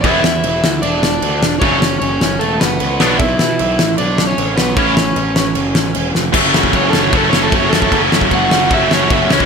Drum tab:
CC |x---x---x---x---|x---x---x---x---|x---x---x---x---|x---x---x---x---|
SD |--o---o---o---o-|--o---o---o---o-|--o---o---o---o-|--o---o---o---o-|
BD |o---------------|o---------------|o---------------|o---------------|

CC |x---x---x---x---|x---x---x---x---|
SD |--o---o---o---o-|--o---o---o---o-|
BD |o--oo---o---o--o|o--oo---o---o--o|